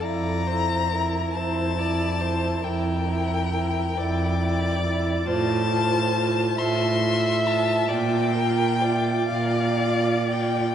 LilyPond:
<<
  \new Staff \with { instrumentName = "Violin" } { \time 12/8 \key f \major \tempo 4. = 46 bes''4. a''4. g''2~ g''8 r8 | a''4. c'''4 a''8 g''4. f''4 g''8 | }
  \new Staff \with { instrumentName = "Violin" } { \time 12/8 \key f \major d''8 c''8 bes'8 c''8 d''8 c''8 bes'4. d''4. | c''4. e''4. d''8 bes'8 d''2 | }
  \new Staff \with { instrumentName = "Viola" } { \time 12/8 \key f \major e'8 e'8 e'8 e'8 e'8 e'8 e'8 e'8 e'8 e'8 e'8 e'8 | f'8 f'8 f'8 f'8 f'8 f'8 f'8 f'8 f'8 f'8 f'8 f'8 | }
  \new Staff \with { instrumentName = "Cello" } { \clef bass \time 12/8 \key f \major f,4. f,4. f,4. f,4. | a,4. a,4. bes,4. bes,4. | }
>>